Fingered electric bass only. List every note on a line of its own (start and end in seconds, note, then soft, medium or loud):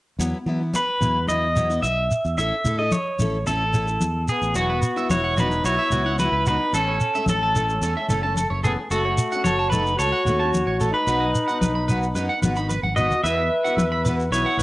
0.19 0.32 E2 medium
0.46 0.71 E3 medium
1.01 1.79 E2 medium
1.83 2.08 B1 medium
2.25 2.37 E2 medium
2.37 2.50 A1 medium
2.64 2.90 A2 medium
3.19 3.97 A1 medium
4.01 4.26 E2 medium
4.41 4.54 A1 medium
4.55 4.80 E1 medium
5.09 5.60 E1 medium
5.64 5.77 B1 medium
5.90 6.28 C#2 medium
6.32 6.57 C#2 medium
6.73 6.98 A1 medium
7.27 7.78 A1 medium
7.81 7.94 E2 medium
8.09 8.46 F#1 medium
8.50 8.75 F#1 medium
8.90 9.15 F#1 medium
9.45 9.95 F#1 medium
9.99 10.12 C#2 medium
10.25 10.63 D#2 medium
10.66 10.91 A1 medium
11.07 11.32 B1 medium
11.61 12.12 B1 medium
12.15 12.28 F#2 medium
12.42 12.80 G#1 medium
12.83 13.08 G#1 medium
13.23 13.48 E2 medium
13.77 14.28 E2 medium
14.30 14.44 B1 medium
14.57 14.63 C#2 medium